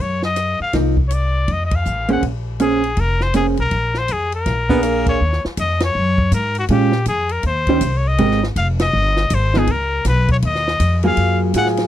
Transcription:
0.00 upright bass F#2, muted trumpet C#5
0.22 muted trumpet D#5, snare
0.36 cross-stick, hi-hat pedal, ride
0.60 muted trumpet F5, muted upright bass stroke
0.73 upright bass C2, hollow-body jazz guitar F3 A#3 D#4, kick, snare, ride
0.97 kick
1.08 muted trumpet C#5, hi-hat pedal, ride
1.13 muted trumpet D5
1.48 upright bass F2, kick, ride
1.52 muted trumpet D#5
1.66 muted trumpet D#5
1.71 kick, ride
1.75 muted trumpet F5
1.85 upright bass A1, hi-hat pedal
2.09 hollow-body jazz guitar A#3 C#4 G#4 C5, muted trumpet F#5, ride
2.23 upright bass A#1, kick, ride
2.60 hollow-body jazz guitar A#3 C#4 G#4 C5, muted trumpet G#4, hi-hat pedal, ride
2.84 ride
2.97 upright bass F1, muted trumpet A#4, kick, ride
3.20 muted trumpet C5, snare
3.34 hollow-body jazz guitar A#3 C#4 G#4 C5, muted trumpet G#4, cross-stick, hi-hat pedal, ride
3.57 upright bass B1, muted trumpet A#4, ride
3.71 upright bass A#1, kick, ride
3.94 muted trumpet C5, snare
4.08 upright bass F2, hi-hat pedal, ride
4.12 muted trumpet G#4
4.32 muted trumpet A#4, ride
4.46 upright bass A#1, kick, snare, ride
4.69 hollow-body jazz guitar A#3 D4 G#4, baritone saxophone B3, kick
4.83 baritone saxophone A#3, cross-stick, hi-hat pedal, ride
5.06 muted trumpet C#5, kick, ride
5.21 upright bass D#2
5.33 snare
5.45 muted upright bass stroke, snare
5.57 upright bass F2, muted trumpet D#5, kick, hi-hat pedal, ride
5.80 snare, ride
5.84 muted trumpet C#5
5.95 upright bass F#2
6.18 kick
6.32 upright bass G#2, muted trumpet A#4, kick, hi-hat pedal, ride
6.55 ride
6.59 muted trumpet F#4
6.68 upright bass A#2, hollow-body jazz guitar G#3 C#4 F4, muted trumpet G4, kick, ride
6.92 snare
7.06 upright bass F2, muted trumpet G#4, kick, hi-hat pedal, ride
7.29 muted trumpet A#4, ride
7.43 upright bass D#2, muted trumpet C5, kick, ride
7.67 hollow-body jazz guitar D#3 C#4 G4 C5, kick, ride
7.81 upright bass C2, kick, hi-hat pedal, ride
7.97 muted trumpet C#5
8.08 muted trumpet D#5
8.18 upright bass G#1, hollow-body jazz guitar G#3 C4 G4 A#4, kick, ride
8.31 snare
8.43 snare
8.56 upright bass F1, muted trumpet F5, kick, hi-hat pedal, ride
8.80 muted trumpet D#5, snare, ride
8.93 upright bass G1
9.17 snare
9.30 upright bass G#1, kick, hi-hat pedal, ride
9.34 muted trumpet C5
9.54 hollow-body jazz guitar F3 B3 D#4, snare
9.58 muted trumpet G#4
9.67 upright bass C#2, muted trumpet A#4, kick, ride
10.05 upright bass B1, muted trumpet B4, kick, snare, hi-hat pedal, ride
10.28 muted trumpet C#5, kick, ride
10.42 upright bass D#2, kick, ride
10.47 muted trumpet D#5
10.55 snare
10.68 snare
10.80 upright bass F2, kick, hi-hat pedal, ride
11.03 hollow-body jazz guitar F#3 A#3 F4 G#4, muted trumpet F5, ride
11.17 upright bass F#2, kick, ride
11.54 upright bass A2, hollow-body jazz guitar F#3 F4 G#4, muted trumpet F#5, kick, hi-hat pedal, ride
11.66 snare
11.77 snare, ride

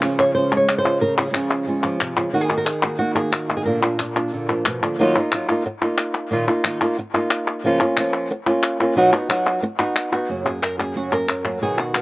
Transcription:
Already playing: nylon-string guitar C#3
0.02 nylon-string guitar C#3 F3 G#3 C#4 F4 C#5, clap
0.19 nylon-string guitar C#5
0.35 nylon-string guitar C#3 F3 G#3 C#4 F4 C5
0.52 nylon-string guitar G#3
0.57 nylon-string guitar C#5
0.68 nylon-string guitar C#4, muted nylon-string guitar stroke, clap
0.78 nylon-string guitar C5
0.84 nylon-string guitar G#3 C#4 F4
1.01 nylon-string guitar C#3 A#4, muted nylon-string guitar stroke
1.18 nylon-string guitar F3 G#3 C#4 F4 G#4
1.22 nylon-string guitar F3 G#3 C#4 F4
1.26 nylon-string guitar F3 G#3 F4
1.30 nylon-string guitar C#3 C#4 F4 G#4, clap
1.35 nylon-string guitar F3 G#3 C#4 F4
1.51 clap
1.67 nylon-string guitar C#3 F3 G#3 C#4 F4
1.84 nylon-string guitar F3
2.00 nylon-string guitar C3, muted nylon-string guitar stroke, clap
2.17 nylon-string guitar C#3 G#3 C#4 F4
2.33 nylon-string guitar D#3 A#3 D#4 F#4
2.41 nylon-string guitar G#4
2.50 nylon-string guitar A#3 D#4 F#4
2.58 nylon-string guitar A#4
2.65 nylon-string guitar G#4, muted nylon-string guitar stroke, clap
2.83 nylon-string guitar A#3 D#4 F#4
2.99 nylon-string guitar D#3 A#3 D#4 F#4
3.15 nylon-string guitar A#3 D#4 F#4 G#4
3.32 nylon-string guitar F#4, muted nylon-string guitar stroke, clap
3.49 nylon-string guitar A#3 D#4 F#4
3.57 nylon-string guitar G#4
3.65 nylon-string guitar A#2 D3 A#3 D4 F4 A#4
3.82 nylon-string guitar A#3 D4 F4
3.99 nylon-string guitar D4, muted nylon-string guitar stroke, clap
4.15 nylon-string guitar A#3 D4 F4
4.32 nylon-string guitar A#2 D3 A#3 D4 F4
4.49 nylon-string guitar F3 A#3 D4 F4
4.66 nylon-string guitar B2, muted nylon-string guitar stroke, clap
4.82 nylon-string guitar D3 A#3 D4 F4
4.99 nylon-string guitar D#3 F#3 A#3 D#4 F4
5.16 nylon-string guitar A#3 D#4 F4
5.32 nylon-string guitar F#3 A#3 D#4 F4, clap
5.49 nylon-string guitar A#3 D#4 F4
5.65 muted nylon-string guitar stroke
5.82 nylon-string guitar A#3 D#4 F4
5.98 clap
6.31 nylon-string guitar A#2 D#3 A#3 D#4 F4
6.48 nylon-string guitar A#3 D#4 F4
6.64 nylon-string guitar D#3 A#3 D#4 F4, clap
6.81 nylon-string guitar A#3 D#4 F4
6.98 muted nylon-string guitar stroke
7.14 nylon-string guitar A#3 D#4 F4
7.31 clap
7.64 nylon-string guitar C#3 F3 A#3 C#4 F4
7.81 nylon-string guitar A#3 C#4 F4
7.97 nylon-string guitar F3 A#3 C#4 F4, clap
8.31 muted nylon-string guitar stroke
8.46 nylon-string guitar A#3 C#4 F4
8.63 clap
8.80 nylon-string guitar A#3 C#4 F4
8.96 nylon-string guitar B2 F#3 B3 D#4 F#4
9.13 nylon-string guitar B3 D#4 F#4
9.29 nylon-string guitar F#3 B3 D#4 F#4, clap
9.62 muted nylon-string guitar stroke
9.79 nylon-string guitar B3 D#4 F#4
9.96 clap
10.12 nylon-string guitar B3 D#4 F#4
10.29 nylon-string guitar F#2 C#3 F#3 A#3 C#4 F#4
10.45 nylon-string guitar F#3 A#3 C#4 F#4 G#4
10.62 nylon-string guitar A#4, muted nylon-string guitar stroke, clap
10.78 nylon-string guitar F#3 A#3 C#4 F#4 G#4, clap
10.95 nylon-string guitar F#2 C#3 F#3 A#3 C#4 F#4
11.12 nylon-string guitar F#3 A#3 C#4 F#4 A#4
11.29 nylon-string guitar C#4, muted nylon-string guitar stroke, clap
11.45 nylon-string guitar F#3 A#3 C#4 F#4
11.61 nylon-string guitar B2 D#3 F#3 B3 D#4 F#4 G#4
11.78 nylon-string guitar B3 D#4 F#4
11.94 nylon-string guitar B3, muted nylon-string guitar stroke, clap

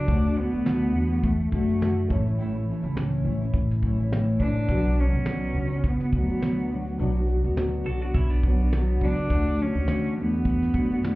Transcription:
Already playing: cello D4
0.06 upright bass D2, steel-string acoustic guitar D3 A3 D4 F#4, felt piano A3 D4 F#4 C#5, kick, shaker
0.17 felt piano D5
0.24 steel-string acoustic guitar A3 D4 F#4, shaker
0.37 steel-string acoustic guitar D3 A3 D4 F#4, cello B3, shaker
0.53 upright bass D2, steel-string acoustic guitar A3 D4 F#4, shaker
0.65 steel-string acoustic guitar D3 A3 D4 F#4, snare, shaker
0.81 shaker
0.94 upright bass E2, steel-string acoustic guitar D3 A3 D4 F#4, shaker
1.10 steel-string acoustic guitar A3 D4 F#4, shaker
1.24 cello A3, kick, shaker
1.40 shaker
1.52 upright bass F#2, steel-string acoustic guitar D3 A3 D4 F#4, cello A3, kick
1.68 steel-string acoustic guitar A3 D4 F#4, shaker
1.80 steel-string acoustic guitar D3 A3 D4 F#4, snare, shaker
1.98 shaker
2.08 upright bass A1, steel-string acoustic guitar E3 A3 C#4 E4, cello E3, felt piano A3 C#4 E4 C#5, kick, shaker
2.25 steel-string acoustic guitar A3 C#4 E4, shaker
2.38 steel-string acoustic guitar A2 E3 A3 C#4 E4, shaker
2.55 steel-string acoustic guitar A3 C#4 E4, shaker
2.68 steel-string acoustic guitar E3 A3 C#4 E4
2.81 upright bass C#2, steel-string acoustic guitar A3 C#4 E4, shaker
2.95 steel-string acoustic guitar A2 E3 A3 C#4 E4, snare, shaker
3.12 shaker
3.25 upright bass A1, steel-string acoustic guitar E3 A3 C#4 E4
3.40 steel-string acoustic guitar A3 C#4 E4, shaker
3.54 upright bass A1, kick, shaker
3.71 snare, shaker
3.83 steel-string acoustic guitar E3 A3 C#4 E4, kick
3.99 steel-string acoustic guitar A3 C#4 E4, shaker
4.12 steel-string acoustic guitar A2 E3 A3 C#4 E4, snare, shaker
4.28 shaker
4.40 upright bass A1, steel-string acoustic guitar E3 A3 C#4 E4, felt piano A3 C#4 E4 B4, cello D4, kick
4.56 shaker
4.67 upright bass B1, steel-string acoustic guitar B2 F#3 B3, felt piano B3 F#4 B4, kick, shaker
4.71 steel-string acoustic guitar D4 F#4
4.84 steel-string acoustic guitar B3 D4 F#4, shaker
4.99 steel-string acoustic guitar F#3 B3 D4 F#4, cello C#4
5.13 upright bass B1, steel-string acoustic guitar B3 D4 F#4, shaker
5.26 steel-string acoustic guitar B2 F#3 B3 D4 F#4, snare, shaker
5.42 shaker
5.55 upright bass C#2, steel-string acoustic guitar F#3 B3 D4 F#4, shaker
5.71 steel-string acoustic guitar B3 D4 F#4, shaker
5.84 cello B3, kick, shaker
6.00 snare, shaker
6.12 upright bass D2, steel-string acoustic guitar F#3 B3 D4 F#4, kick
6.17 cello B3
6.28 steel-string acoustic guitar B3 D4 F#4, shaker
6.41 steel-string acoustic guitar B2 F#3 B3 D4 F#4, snare, shaker
6.58 shaker
6.69 steel-string acoustic guitar F#3 B3 D4 F#4, shaker
6.75 cello F#3
6.86 steel-string acoustic guitar B3 D4 F#4, shaker
6.98 upright bass B1, steel-string acoustic guitar B2 F#3 B3 D4 F#4, felt piano B3 D4 F#4 D5, shaker
7.15 steel-string acoustic guitar B3 D4 F#4, shaker
7.26 steel-string acoustic guitar F#3 B3 D4 F#4, shaker
7.44 upright bass D2, steel-string acoustic guitar B3 D4 F#4, shaker
7.56 steel-string acoustic guitar B2 F#3 B3 D4 F#4, snare, shaker
7.73 shaker
7.86 upright bass B1, steel-string acoustic guitar F#3 B3 D4 F#4, clean electric guitar F#4 A4, shaker
8.02 steel-string acoustic guitar B3 D4 F#4, clean electric guitar D4 F#4, shaker
8.14 upright bass B1, clean electric guitar C#4 E4, kick, shaker
8.30 clean electric guitar B3 D4, shaker
8.43 steel-string acoustic guitar F#3 B3 D4 F#4, kick
8.59 steel-string acoustic guitar B3 D4 F#4, shaker
8.72 steel-string acoustic guitar B2 F#3 B3 D4 F#4, snare, shaker
8.88 shaker
9.01 upright bass C#2, steel-string acoustic guitar F#3 B3 D4 F#4, felt piano B3 D4 F#4 D5, cello D4, kick
9.17 steel-string acoustic guitar B3 D4, shaker
9.29 upright bass D2, steel-string acoustic guitar D3 A3 D4 F#4, felt piano A3 E4, kick, shaker
9.33 felt piano F#5
9.38 felt piano F#4
9.45 steel-string acoustic guitar A3 D4 F#4, shaker
9.58 steel-string acoustic guitar D3 A3 D4 F#4, cello C#4, shaker
9.75 upright bass D2, steel-string acoustic guitar A3 D4 F#4, shaker
9.88 steel-string acoustic guitar D3 A3 D4 F#4, snare, shaker
10.03 shaker
10.15 upright bass E2, steel-string acoustic guitar D3 A3 D4 F#4, cello B3, shaker
10.33 steel-string acoustic guitar A3 D4 F#4, shaker
10.45 kick, shaker
10.62 snare, shaker
10.74 upright bass F#2, steel-string acoustic guitar D3 A3 D4 F#4, kick, shaker
10.90 steel-string acoustic guitar A3 D4 F#4, shaker
11.02 steel-string acoustic guitar D3 A3 D4 F#4, snare, shaker

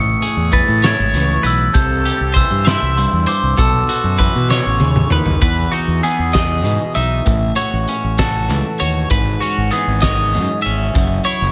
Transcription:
Already playing: fingered electric bass A1, clean electric guitar A2 E3, glockenspiel C#7
0.22 clean electric guitar G#4, closed hi-hat
0.36 fingered electric bass E2
0.52 clean electric guitar E3 B4, glockenspiel A6, kick, closed hi-hat
0.68 fingered electric bass A2
0.83 clean electric guitar E4 C#5, glockenspiel G#6, snare, closed hi-hat
0.99 fingered electric bass G#1
1.13 fingered electric bass C#2, clean electric guitar E3, closed hi-hat
1.43 fingered electric bass B1, clean electric guitar B4, glockenspiel E6, closed hi-hat
1.73 fingered electric bass C2, clean electric guitar C3 A4, glockenspiel G6, kick, closed hi-hat
2.05 clean electric guitar G4, closed hi-hat
2.21 fingered electric bass C2
2.34 clean electric guitar E3 C5, glockenspiel E6, kick, closed hi-hat
2.51 fingered electric bass G2
2.65 clean electric guitar E4 E5, glockenspiel C6, snare, closed hi-hat
2.82 fingered electric bass C2
2.97 clean electric guitar G2, glockenspiel C6, closed hi-hat
3.13 fingered electric bass E2
3.27 clean electric guitar C5, glockenspiel D6, closed hi-hat
3.43 fingered electric bass C2
3.57 fingered electric bass B1, clean electric guitar B2 A4, glockenspiel E6, kick, closed hi-hat
3.89 clean electric guitar F#4, closed hi-hat
4.04 fingered electric bass F#2
4.19 clean electric guitar E3 B4, kick, closed hi-hat
4.35 fingered electric bass B2
4.49 clean electric guitar B2 C#5, snare
4.66 fingered electric bass A1
4.80 fingered electric bass D#2, clean electric guitar C#3, high tom
4.96 mid tom
5.10 fingered electric bass D#2, clean electric guitar D#3 B4, mid tom
5.26 floor tom
5.41 fingered electric bass E2, clean electric guitar E2 B4, kick, closed hi-hat
5.72 clean electric guitar D#4 F#4, closed hi-hat
5.88 fingered electric bass E2
6.03 clean electric guitar E3 B3 G#4, closed hi-hat
6.19 fingered electric bass E2
6.33 clean electric guitar G#4 D#5, kick, snare, closed hi-hat
6.64 fingered electric bass G#2, clean electric guitar B2, closed hi-hat
6.95 fingered electric bass B1, clean electric guitar D#4 E5, closed hi-hat
7.26 fingered electric bass A1, clean electric guitar A2, kick, closed hi-hat
7.56 clean electric guitar F#4 C#5, closed hi-hat
7.73 fingered electric bass A1
7.88 clean electric guitar C#4, closed hi-hat
8.04 fingered electric bass A1
8.18 clean electric guitar F#4 A4, kick, snare, closed hi-hat
8.49 fingered electric bass C#2, clean electric guitar E3, closed hi-hat
8.80 fingered electric bass D#2, clean electric guitar F#4 C#5, closed hi-hat
9.10 fingered electric bass G#1, clean electric guitar G#2 B4, kick, closed hi-hat
9.41 clean electric guitar C#4 F#4, closed hi-hat
9.58 fingered electric bass G#1
9.71 clean electric guitar E3 B3 G#4, closed hi-hat
9.87 fingered electric bass G#1
10.02 clean electric guitar C#5 D#5, kick, snare, closed hi-hat
10.34 fingered electric bass F#2, clean electric guitar G#2, closed hi-hat
10.62 fingered electric bass G#1, clean electric guitar C#4 E5, closed hi-hat
10.94 fingered electric bass F#1, clean electric guitar F#2, kick, closed hi-hat
11.25 clean electric guitar E4 C#5, closed hi-hat
11.42 fingered electric bass F#1

